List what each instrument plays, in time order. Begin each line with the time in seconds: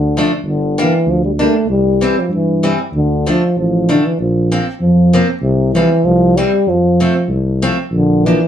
Already playing: tuba D2, euphonium D3
0.17 steel-string acoustic guitar F3 A3 D4
0.43 tuba G1
0.48 euphonium D3
0.78 steel-string acoustic guitar G3 A#3 D4
0.82 euphonium E3
1.06 tuba D2, euphonium F3
1.25 euphonium G3
1.39 steel-string acoustic guitar G3 A#3 D4, euphonium A3
1.67 tuba C2
1.71 euphonium G3
2.01 steel-string acoustic guitar E3 G3 C4
2.19 euphonium F3
2.29 tuba G2
2.35 euphonium E3
2.63 steel-string acoustic guitar E3 G3 C4
2.93 tuba D2
2.97 euphonium D3
3.26 steel-string acoustic guitar F3 A3 D4, euphonium F3
3.57 tuba A1, euphonium F3
3.89 euphonium D3, steel-string acoustic guitar F3 A3 D4
4.06 euphonium E3
4.20 tuba A#1, euphonium F3
4.52 steel-string acoustic guitar F3 A#3 C4
4.81 tuba F2, euphonium F3
5.13 steel-string acoustic guitar F3 A#3 C4
5.42 tuba C2, euphonium C3
5.74 euphonium E3, steel-string acoustic guitar F3 G3 C4
6.04 tuba C2, euphonium F3
6.37 steel-string acoustic guitar E3 G3 C4, euphonium G3
6.66 tuba F2, euphonium F3
7.00 steel-string acoustic guitar F3 A3 C4
7.28 tuba C2
7.62 steel-string acoustic guitar F3 A3 C4
7.91 tuba A#1, euphonium D3
8.26 euphonium E3, steel-string acoustic guitar F3 A#3 D4